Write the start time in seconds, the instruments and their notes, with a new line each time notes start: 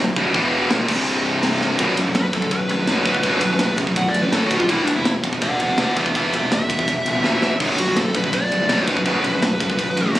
0.00 fingered electric bass B0, distorted electric guitar B1 F#2
0.16 fingered electric bass B0, distorted electric guitar B1 F#2 B2, kick
0.33 fingered electric bass E1, distorted electric guitar E2 B2 E3, kick, crash
0.70 fingered electric bass D#1, distorted electric guitar D#2 A#2 D#3, snare, crash
0.88 fingered electric bass C1, distorted electric guitar C2 G2 C3, kick, crash
1.07 crash
1.43 snare, crash
1.61 snare
1.79 fingered electric bass B0, distorted electric guitar B1 F#2 B2, kick, ride
1.97 fingered electric bass B0, distorted electric guitar B1 F#2, ride
2.06 distorted electric guitar B1 F#2
2.14 fingered electric bass B0, distorted electric guitar B1 F#2, lead electric guitar B4, snare, ride
2.33 fingered electric bass B0, distorted electric guitar B1 F#2, lead electric guitar A4, kick, ride
2.42 distorted electric guitar B1 F#2, kick
2.51 fingered electric bass B0, distorted electric guitar B1 F#2, lead electric guitar B4, kick, ride
2.69 distorted electric guitar B1 F#2, lead electric guitar B4, ride
2.77 distorted electric guitar B1 F#2
2.87 fingered electric bass B0, distorted electric guitar B1 F#2 B2, snare, ride
3.05 fingered electric bass B0, distorted electric guitar B1 F#2 B2, kick, ride
3.13 distorted electric guitar B1 F#2, kick
3.23 fingered electric bass B0, distorted electric guitar B1 F#2 B2, kick, ride
3.41 fingered electric bass B0, distorted electric guitar B1 F#2, ride
3.51 distorted electric guitar B1 F#2
3.59 fingered electric bass B0, distorted electric guitar B1 F#2, snare, ride
3.77 distorted electric guitar B1 F#2, kick, ride
3.86 distorted electric guitar B1 F#2, kick
3.96 fingered electric bass B0, distorted electric guitar B1 F#2, lead electric guitar F#5, kick, ride
4.09 lead electric guitar D5
4.14 fingered electric bass A1, distorted electric guitar B1 F#2, ride
4.22 distorted electric guitar B1 F#2, lead electric guitar B4
4.31 fingered electric bass A1, distorted electric guitar B1 F#2 B2, lead electric guitar A4, snare, ride
4.46 distorted electric guitar B1 F#2, lead electric guitar F#4
4.51 fingered electric bass B0, distorted electric guitar B2, kick, ride
4.56 distorted electric guitar B1 F#2, lead electric guitar F4, kick
4.68 fingered electric bass E1, distorted electric guitar E2 B2 E3, lead electric guitar E4, kick, ride
4.82 distorted electric guitar E2 B2, lead electric guitar D4
4.87 fingered electric bass E1, ride
4.96 distorted electric guitar E2 B2, lead electric guitar E4
5.04 fingered electric bass E1, distorted electric guitar E2 B2, snare, ride
5.22 fingered electric bass E1, distorted electric guitar E2 B2, kick, ride
5.33 distorted electric guitar E2 B2, kick
5.41 fingered electric bass E1, distorted electric guitar E2 B2, lead electric guitar D5 F#5, kick, ride
5.60 distorted electric guitar E2 B2, lead electric guitar D5 F#5, ride
5.69 distorted electric guitar E2 B2
5.78 fingered electric bass E1, distorted electric guitar E2 B2 E3, lead electric guitar D5 F#5, snare, ride
5.96 fingered electric bass E1, distorted electric guitar E2 B2 E3, lead electric guitar G#4 E5, kick, ride
6.06 distorted electric guitar E2 B2, kick
6.14 fingered electric bass E1, distorted electric guitar E2 B2 E3, lead electric guitar G#4 E5, kick, ride
6.33 fingered electric bass E1, distorted electric guitar E2 B2, lead electric guitar G#4 E5, ride
6.41 distorted electric guitar E2 B2
6.51 fingered electric bass E1, distorted electric guitar E2 B2, lead electric guitar E5, snare, ride
6.69 distorted electric guitar E2 B2, kick, ride
6.77 distorted electric guitar E2 B2, kick
6.88 fingered electric bass E1, distorted electric guitar E2 B2, kick, ride
7.05 fingered electric bass D#1, distorted electric guitar E2 B2, ride
7.14 distorted electric guitar E2 B2
7.22 fingered electric bass D#1, distorted electric guitar E2 B2 E3, snare
7.41 fingered electric bass E1, distorted electric guitar E2 B2 E3, snare
7.50 distorted electric guitar E2 B2
7.60 fingered electric bass B0, distorted electric guitar B1 F#2 B2, kick, crash
7.78 fingered electric bass B0, distorted electric guitar B1 F#2, lead electric guitar F#4, ride
7.87 distorted electric guitar B1 F#2
7.96 fingered electric bass B0, distorted electric guitar B1 F#2, lead electric guitar A4, snare, ride
8.15 fingered electric bass B0, distorted electric guitar B1 F#2, lead electric guitar B4, kick, ride
8.24 distorted electric guitar B1 F#2, kick
8.33 fingered electric bass B0, distorted electric guitar B1 F#2, lead electric guitar D5, kick, ride
8.52 distorted electric guitar B1 F#2, ride
8.60 distorted electric guitar B1 F#2
8.69 fingered electric bass B0, distorted electric guitar B1 F#2 B2, snare, ride
8.87 fingered electric bass B0, distorted electric guitar B1 F#2 B2, lead electric guitar B4, kick, ride
8.97 distorted electric guitar B1 F#2, kick
9.05 fingered electric bass B0, distorted electric guitar B1 F#2 B2, lead electric guitar B4, kick, ride
9.24 fingered electric bass B0, distorted electric guitar B1 F#2, lead electric guitar B4, ride
9.33 distorted electric guitar B1 F#2
9.42 fingered electric bass B0, distorted electric guitar B1 F#2, lead electric guitar B4, snare, ride
9.60 distorted electric guitar B1 F#2, kick, ride
9.70 distorted electric guitar B1 F#2, kick
9.79 fingered electric bass B0, distorted electric guitar B1 F#2, kick, ride
9.97 fingered electric bass A1, distorted electric guitar B1 F#2, ride
10.06 distorted electric guitar B1 F#2
10.15 fingered electric bass A1, distorted electric guitar B1 F#2 B2, snare, ride